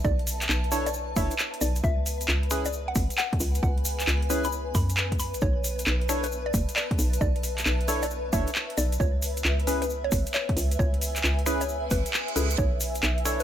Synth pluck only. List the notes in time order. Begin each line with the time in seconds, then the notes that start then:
0.05 D5
0.86 D5
1.16 E5
1.61 D5
1.84 E5
2.66 D5
2.88 F#5
3.18 F#5
3.63 F#5
4.45 B5
4.75 B5
5.19 B5
5.42 C#5
6.24 B4
6.46 D5
6.76 D5
7.21 D5
8.03 D5
8.33 E5
8.78 D5
9.00 C#5
9.82 B4
10.04 C#5
10.34 C#5
10.79 C#5
11.61 C#5
11.91 B4
12.36 A4
12.58 C#5
13.40 B4